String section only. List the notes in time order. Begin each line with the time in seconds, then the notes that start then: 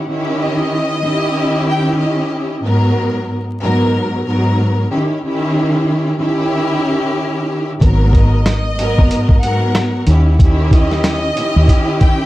0.07 D#3 C#4 E4 G4
1.02 D#3 C#4 E4 G4
2.63 G#2 F#3 B3 A#4
3.61 G#2 F#3 B3 A#4
4.25 G#2 F#3 B3 A#4
4.90 D#3 C#4 E4 G4
5.23 D#3 C#4 E4 G4
6.18 D#3 C#4 E4 G4
7.79 G#2 F#3 B3 A#4
8.77 G#2 F#3 B3 A#4
9.42 G#2 F#3 B3 A#4
10.07 D#3 C#4 E4 G4
10.40 D#3 C#4 E4 G4
11.34 D#3 C#4 E4 G4